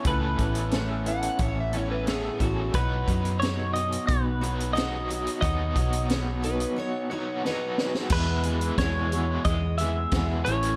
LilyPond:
<<
  \new Staff \with { instrumentName = "Clean electric guitar" } { \time 4/4 \key e \major \tempo 4 = 89 b'2 r2 | b'4 cis''8 dis''8 b'4 dis''4 | dis''2 r2 | b'4 cis''4 dis''8 e''4 cis''8 | }
  \new Staff \with { instrumentName = "Electric slide guitar" } { \time 4/4 \key e \major r4. fis''8 cis''16 e''16 cis''16 b'16 gis'8 fis'8 | r1 | r4. b'8 cis''4 b'8. r16 | r1 | }
  \new Staff \with { instrumentName = "Steel-string acoustic guitar" } { \time 4/4 \key e \major <a, a b cis' e'>8 <b cis' e'>8 <a, a b cis' e'>8 <b cis' e'>8 <a b cis' e'>8 <b cis' e'>8 <a, a b cis' e'>8 <b cis' e'>8 | <b dis' fis' cis''>8 <dis' fis' cis''>8 <b dis' fis' cis''>8 <dis' fis' cis''>8 <b dis' fis' cis''>8 <dis' fis' cis''>8 <b dis' fis' cis''>8 <dis' fis' cis''>8 | <b dis' fis' cis''>8 <dis' fis' cis''>8 <b dis' fis' cis''>8 <dis' fis' cis''>8 <b dis' fis' cis''>8 <dis' fis' cis''>8 <b dis' fis' cis''>8 <dis' fis' cis''>8 | <e, b, e gis b gis'>8 <e gis b gis'>8 <e, b, e gis b gis'>8 <e gis b gis'>8 <e gis b gis'>8 <e gis b gis'>8 <e, b, e gis b gis'>8 <a cis' e'>8 | }
  \new Staff \with { instrumentName = "Overdriven electric guitar" } { \time 4/4 \key e \major <a, e a cis' a'>2~ <a, e a cis' a'>8 <a, e a cis' a'>8 <a, e a cis' a'>4 | <b, fis b dis' fis'>2~ <b, fis b dis' fis'>8 <b, fis b dis' fis'>8 <b, fis b dis' fis'>4 | <b, fis b dis' fis'>2~ <b, fis b dis' fis'>8 <b, fis b dis' fis'>8 <b, fis b dis' fis'>4 | <e, b, e gis b e'>8. <e gis b e'>16 <e, b, e gis b e'>8 <e gis b e'>16 <e gis b e'>8. <e gis b e'>8 <e, b, e gis b e'>8 <a, e a cis' e'>16 <a cis' e'>16 | }
  \new Staff \with { instrumentName = "Fingered electric bass" } { \clef bass \time 4/4 \key e \major cis,8 a,,4. a,,4. a,,8 | b,,8 fis,4. b,,2 | dis,8 b,,4. r2 | e,4 e,4 e,4 e,8 a,,8 | }
  \new DrumStaff \with { instrumentName = "Drums" } \drummode { \time 4/4 <hh bd>8 <hh bd>16 hh16 <hh sn>8 hh16 hh16 <hh bd>8 hh8 <hh sn>8 <hh bd>8 | <hh bd>8 <hh bd>16 hh16 <hh sn>8 hh16 hh16 <hh bd>8 hh16 hh16 <hh sn>8 hh16 hh16 | <hh bd>8 <hh bd>16 hh16 <hh sn>8 hh16 hh16 r4 sn8 sn16 sn16 | <cymc bd>8 hh16 hh16 <hh bd sn>8 hh8 <hh bd>8 hh8 <hh bd sn>8 hh16 hh16 | }
>>